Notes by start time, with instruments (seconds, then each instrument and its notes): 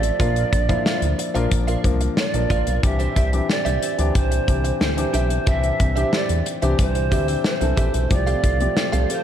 Already playing: analog synth bass A1, grand piano F3 A3 C4 G4 A4, pan flute D5
0.03 muted clean electric guitar stroke, closed hi-hat
0.19 analog synth bass A#1, grand piano F3 A#3 D4 A#4, clean electric guitar F4 A#4 D5 F5, kick, closed hi-hat
0.36 closed hi-hat
0.53 analog synth bass A#1, muted clean electric guitar stroke, kick, closed hi-hat
0.69 grand piano F3 A#3 D4 E4, clean electric guitar F4 A#4 D5 F5, kick, closed hi-hat
0.85 clean electric guitar F4 A#4 D5 F5, snare
1.02 analog synth bass D2, muted clean electric guitar stroke, closed hi-hat
1.18 muted clean electric guitar stroke, closed hi-hat
1.34 analog synth bass A#1, grand piano F3 A#3 D4 A#4, clean electric guitar F4 A#4 D5 F5, closed hi-hat
1.51 analog synth bass A#1, kick, closed hi-hat
1.67 clean electric guitar F4 A#4 D5 F5, closed hi-hat
1.84 analog synth bass C2, grand piano F3 A#3 D4 A#4, muted clean electric guitar stroke, kick, closed hi-hat
2.01 muted clean electric guitar stroke, closed hi-hat
2.17 pan flute D5, muted clean electric guitar stroke, snare
2.33 analog synth bass A#1, grand piano F3 A#3 D4 A#4, muted clean electric guitar stroke, closed hi-hat
2.50 analog synth bass A#1, clean electric guitar F4 A#4 D5 F5, kick, closed hi-hat
2.66 analog synth bass B1, clean electric guitar F4 A#4 D5 F5, closed hi-hat
2.83 analog synth bass C2, grand piano E3 C4 D4 G4, pan flute E5, muted clean electric guitar stroke, kick, closed hi-hat
2.99 clean electric guitar D4 G4 C5 E5, closed hi-hat
3.15 analog synth bass C2, clean electric guitar D4 G4 C5 E5, kick, closed hi-hat
3.32 grand piano E3 C4 D4 G4, muted clean electric guitar stroke, closed hi-hat
3.49 pan flute D5, muted clean electric guitar stroke, snare
3.65 analog synth bass C2, clean electric guitar D4 G4 C5 E5, closed hi-hat
3.82 clean electric guitar D4 G4 C5 E5, closed hi-hat
3.98 analog synth bass D2, grand piano E3 C4 D4 G4, muted clean electric guitar stroke, closed hi-hat
4.15 analog synth bass C2, pan flute C5, muted clean electric guitar stroke, kick, closed hi-hat
4.31 muted clean electric guitar stroke, closed hi-hat
4.48 analog synth bass C2, grand piano E3 C4 D4 G4, kick, closed hi-hat
4.64 muted clean electric guitar stroke, closed hi-hat
4.81 analog synth bass D2, pan flute C5, muted clean electric guitar stroke, snare
4.97 grand piano E3 C4 D4 G4, muted clean electric guitar stroke, closed hi-hat
5.13 analog synth bass B1, clean electric guitar D4 G4 C5 E5, closed hi-hat
5.30 muted clean electric guitar stroke, closed hi-hat
5.47 analog synth bass C2, grand piano E3 C4 D4 G4, clean electric guitar D4 G4 C5 E5, pan flute E5, kick, closed hi-hat
5.63 closed hi-hat
5.80 analog synth bass C2, muted clean electric guitar stroke, kick, closed hi-hat
5.96 grand piano E3 C4 D4 G4, clean electric guitar D4 G4 C5 E5, closed hi-hat
6.12 clean electric guitar D4 G4 C5 E5, pan flute D5, snare
6.29 analog synth bass E2, muted clean electric guitar stroke, closed hi-hat
6.46 muted clean electric guitar stroke, closed hi-hat
6.62 analog synth bass C2, grand piano E3 C4 D4 G4, clean electric guitar D4 G4 C5 E5, closed hi-hat
6.79 analog synth bass C2, pan flute C5, muted clean electric guitar stroke, kick, closed hi-hat
6.95 muted clean electric guitar stroke, closed hi-hat
7.11 analog synth bass D2, grand piano E3 C4 D4 G4, clean electric guitar D4 G4 C5 E5, kick, closed hi-hat
7.28 clean electric guitar D4 G4 C5 E5, closed hi-hat
7.44 pan flute C5, muted clean electric guitar stroke, snare
7.61 analog synth bass C2, grand piano E3 C4 D4 A4, muted clean electric guitar stroke, closed hi-hat
7.77 analog synth bass A#1, clean electric guitar D4 G4 C5 E5, kick, closed hi-hat
7.94 analog synth bass B1, clean electric guitar D4 G4 C5 E5, closed hi-hat
8.10 analog synth bass C2, grand piano F3 A3 C4 G4, pan flute D5, muted clean electric guitar stroke, kick, closed hi-hat
8.27 clean electric guitar C4 G4 A4 F5, closed hi-hat
8.43 analog synth bass C2, clean electric guitar C4 G4 A4 F5, kick, closed hi-hat
8.60 grand piano F3 A3 C4 G4, closed hi-hat
8.76 muted clean electric guitar stroke, snare
8.92 analog synth bass C2, clean electric guitar C4 G4 A4 F5, closed hi-hat
9.09 clean electric guitar C4 G4 A4 F5, pan flute C5, closed hi-hat